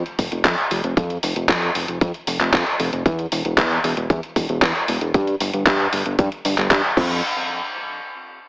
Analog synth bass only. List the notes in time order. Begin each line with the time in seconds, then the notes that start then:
0.19 F1
0.32 F1
0.45 F2
0.71 F1
0.84 F1
0.97 F2
1.23 F1
1.36 F1
1.49 F2
1.75 F1
1.88 F1
2.01 F2
2.27 F1
2.40 F1
2.54 F2
2.80 F1
2.93 F1
3.06 E2
3.32 E1
3.45 E1
3.58 E2
3.84 E1
3.97 E1
4.10 E2
4.36 E1
4.49 E1
4.62 E2
4.88 E1
5.01 E1
5.14 G2
5.41 G1
5.54 G1
5.67 G2
5.93 G1
6.06 G1
6.19 G2
6.45 G1
6.58 G1
6.71 G2
6.97 F2